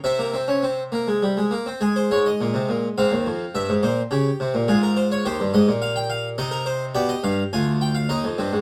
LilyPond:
<<
  \new Staff \with { instrumentName = "Harpsichord" } { \time 3/4 \key c \phrygian \tempo 4 = 105 << { e''2~ e''8 r8 | aes'16 c''16 des''16 ees''4~ ees''16 f''4 | e''8 c''8 g'4 aes'16 bes'16 c''16 des''16 | c''8 ees''8 f''16 g''16 f''8 ees''16 bes'16 c''8 |
d''16 ees''16 f''8 aes''8 g''16 f''16 ees''4 | } \\ { c'16 bes16 c'16 des'16 c'8 bes16 aes16 g16 aes16 bes16 c'16 | aes2 c'4~ | c'2 f'4 | g'2 ees'4 |
g'4 f'4 ees'8 c'8 | } >> }
  \new Staff \with { instrumentName = "Harpsichord" } { \clef bass \time 3/4 \key c \phrygian c2~ c8 r8 | r8 aes,8 bes,16 c16 bes,8 aes,16 ees,16 f,8 | g,16 aes,16 bes,8 des8 c16 bes,16 aes,4 | ees,16 g,16 aes,16 bes,4~ bes,16 c4 |
b,8 g,8 d,4 ees,16 f,16 g,16 aes,16 | }
>>